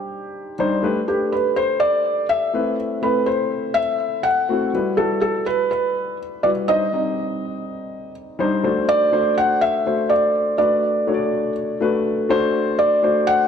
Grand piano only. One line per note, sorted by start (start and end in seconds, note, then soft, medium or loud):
0.00 0.59 G3 medium
0.00 0.59 D4 medium
0.00 0.59 D#4 medium
0.00 0.60 C5 medium
0.59 0.74 G3 medium
0.59 0.74 D4 medium
0.59 0.74 D#4 medium
0.59 0.74 C5 medium
0.83 0.98 A3 medium
0.83 0.98 D4 medium
0.83 0.98 G4 medium
0.83 0.99 B4 loud
1.07 1.67 A3 medium
1.07 1.68 D4 medium
1.07 1.68 G4 medium
1.07 1.68 B4 medium
2.53 2.93 A3 medium
2.53 2.93 C4 medium
2.53 2.93 E4 medium
2.53 2.94 B4 medium
3.02 3.62 A3 medium
3.02 3.62 C4 medium
3.02 3.63 E4 medium
3.02 3.63 B5 medium
4.49 4.64 A3 medium
4.49 4.64 C4 medium
4.49 4.64 E4 medium
4.49 4.65 F#4 medium
4.74 4.89 G3 medium
4.74 4.89 E4 medium
4.74 4.89 F#4 medium
4.74 4.89 B4 medium
4.98 5.58 G3 medium
4.98 5.58 E4 medium
4.98 5.58 F#4 medium
4.98 5.59 B4 medium
6.44 6.59 G3 medium
6.44 6.59 E4 medium
6.44 6.59 F#4 medium
6.44 6.60 B4 medium
6.68 6.83 G3 medium
6.68 6.84 D4 medium
6.68 6.84 D#4 medium
6.68 6.84 C5 medium
6.93 7.53 G3 medium
6.93 7.53 C4 medium
6.93 7.53 D#4 medium
6.93 7.53 D#5 medium
8.39 8.54 G3 medium
8.39 8.54 D4 medium
8.39 8.55 D#4 medium
8.39 8.55 C5 medium
8.64 8.94 A3 medium
8.64 8.94 D4 medium
8.64 8.94 F#4 medium
8.64 8.94 C5 medium
9.12 9.57 A3 medium
9.12 9.57 D4 medium
9.12 9.58 F#4 medium
9.12 9.58 C5 medium
9.86 10.31 A3 medium
9.86 10.31 D4 medium
9.86 10.31 F#4 medium
9.86 10.31 C5 medium
10.58 10.89 A3 medium
10.58 10.89 D4 medium
10.58 10.89 F#4 medium
10.58 10.89 B4 medium
11.07 11.52 A3 medium
11.07 11.52 D4 medium
11.07 11.53 F#4 medium
11.07 11.14 C#5 medium
11.14 11.56 D5 medium
11.81 12.26 A3 medium
11.81 12.26 D4 medium
11.81 12.26 F#4 medium
11.81 12.26 B4 medium
12.29 12.88 A3 medium
12.29 12.88 D4 medium
12.29 12.89 F#4 medium
12.29 12.89 C5 loud
13.03 13.48 A3 medium
13.03 13.48 D4 medium
13.03 13.48 F#4 medium
13.03 13.48 C5 medium